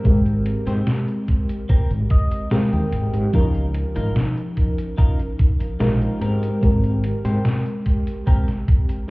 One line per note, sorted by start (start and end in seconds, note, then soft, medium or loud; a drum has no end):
0.00 0.04 G#3 medium
0.00 2.46 G#3 medium
0.00 0.05 C4 medium
0.00 0.46 C4 medium
0.00 0.06 G4 medium
0.00 0.46 G4 medium
0.00 0.07 A#4 loud
0.00 0.46 A#4 loud
0.05 0.54 G#1 loud
0.05 2.47 C4 medium
0.05 2.47 G4 medium
0.05 2.48 A#4 medium
0.05 kick loud
0.05 closed hi-hat medium
0.05 cabasa soft
0.26 closed hi-hat soft
0.26 cabasa soft
0.46 closed hi-hat medium
0.67 0.80 G#2 medium
0.67 0.87 C4 medium
0.67 0.87 G4 medium
0.67 0.87 C5 medium
0.67 snare soft
0.67 closed hi-hat soft
0.67 cabasa medium
0.87 snare loud
0.87 closed hi-hat soft
0.87 cabasa soft
1.08 muted clean electric guitar stroke soft
1.08 closed hi-hat soft
1.08 cabasa soft
1.28 kick medium
1.28 closed hi-hat medium
1.49 closed hi-hat soft
1.49 cabasa medium
1.69 1.91 C4 medium
1.69 1.91 G4 medium
1.69 1.91 A#4 loud
1.69 kick loud
1.69 closed hi-hat soft
1.69 cabasa soft
1.91 2.03 G#1 medium
1.91 closed hi-hat soft
1.91 cabasa soft
2.10 2.49 D#5 medium
2.10 muted clean electric guitar stroke soft
2.10 kick loud
2.10 closed hi-hat medium
2.31 closed hi-hat soft
2.31 cabasa medium
2.51 3.29 G#3 medium
2.51 2.93 C4 medium
2.51 3.29 C4 medium
2.51 2.93 G4 medium
2.51 3.29 G4 medium
2.51 2.93 A#4 medium
2.51 3.30 A#4 loud
2.51 2.71 F5 medium
2.51 snare loud
2.51 closed hi-hat soft
2.51 cabasa soft
2.73 2.85 D#2 medium
2.73 3.30 G5 medium
2.73 closed hi-hat soft
2.73 cabasa soft
2.92 3.06 G#1 medium
2.92 closed hi-hat medium
3.14 3.26 G#2 medium
3.14 closed hi-hat soft
3.14 cabasa medium
3.33 3.83 C#2 loud
3.33 5.75 F3 medium
3.33 5.75 C#4 medium
3.33 3.65 D#4 loud
3.33 5.76 D#4 medium
3.33 3.65 F4 medium
3.33 3.65 A#4 loud
3.33 5.77 A#4 medium
3.33 kick loud
3.33 closed hi-hat medium
3.33 cabasa soft
3.55 closed hi-hat soft
3.55 cabasa soft
3.74 closed hi-hat medium
3.96 4.08 G#1 medium
3.96 4.16 D#4 medium
3.96 4.16 F4 medium
3.96 4.16 A#4 loud
3.96 closed hi-hat soft
3.96 cabasa medium
4.16 snare loud
4.16 closed hi-hat soft
4.16 cabasa soft
4.37 muted clean electric guitar stroke soft
4.37 closed hi-hat soft
4.37 cabasa soft
4.57 kick medium
4.57 closed hi-hat medium
4.78 closed hi-hat soft
4.78 cabasa medium
4.98 5.19 D#4 medium
4.98 5.19 F4 medium
4.98 5.19 A#4 medium
4.98 kick loud
4.98 closed hi-hat medium
4.98 cabasa soft
5.19 closed hi-hat soft
5.19 cabasa soft
5.39 muted clean electric guitar stroke soft
5.39 kick loud
5.39 closed hi-hat medium
5.60 muted fretless electric bass stroke soft
5.60 closed hi-hat medium
5.60 cabasa medium
5.80 6.06 A#1 medium
5.80 6.57 G#3 loud
5.80 6.58 C4 medium
5.80 6.21 D#4 medium
5.80 6.21 F4 medium
5.80 6.58 G4 medium
5.80 6.20 A#4 medium
5.80 6.58 A#4 loud
5.80 snare loud
5.80 closed hi-hat medium
5.80 cabasa soft
6.02 closed hi-hat soft
6.02 cabasa soft
6.21 6.47 G#2 medium
6.21 7.04 C4 medium
6.21 7.04 G4 medium
6.21 7.04 A#4 loud
6.21 closed hi-hat medium
6.43 closed hi-hat medium
6.43 cabasa medium
6.61 7.12 G#1 loud
6.61 9.04 G#3 medium
6.61 9.04 C4 medium
6.61 9.05 G4 medium
6.61 9.05 A#4 medium
6.61 kick loud
6.61 closed hi-hat medium
6.61 cabasa soft
6.84 closed hi-hat soft
6.84 cabasa soft
7.04 closed hi-hat medium
7.25 7.37 G#2 medium
7.25 7.45 C4 medium
7.25 7.45 G4 medium
7.25 7.45 C5 loud
7.25 snare soft
7.25 closed hi-hat medium
7.25 cabasa medium
7.45 snare loud
7.45 closed hi-hat medium
7.45 cabasa soft
7.65 muted clean electric guitar stroke soft
7.65 closed hi-hat soft
7.65 cabasa soft
7.86 kick medium
7.86 closed hi-hat medium
8.07 closed hi-hat medium
8.07 cabasa medium
8.27 8.48 C4 medium
8.27 8.48 G4 medium
8.27 8.48 A#4 loud
8.27 kick loud
8.27 closed hi-hat medium
8.27 cabasa soft
8.48 snare soft
8.48 closed hi-hat soft
8.48 cabasa soft
8.68 muted clean electric guitar stroke soft
8.68 kick loud
8.68 closed hi-hat medium
8.89 closed hi-hat medium
8.89 cabasa medium